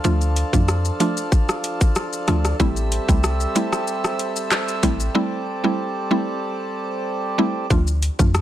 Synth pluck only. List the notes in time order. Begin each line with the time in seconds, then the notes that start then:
0.04 F3 A3 D4 F4
0.53 F3 A3 D4 F4
1.00 F3 A3 D4 F4
2.28 F3 A3 D4 F4
2.60 G3 A3 C4 E4
3.08 G3 A3 C4 E4
3.55 G3 A3 C4 E4
4.83 G3 A3 C4 E4
5.15 G3 A3 C4 E4
5.64 G3 A3 C4 E4
6.11 G3 A3 C4 E4
7.38 G3 A3 C4 E4
7.70 F3 A3 D4 F4
8.19 F3 A3 D4 F4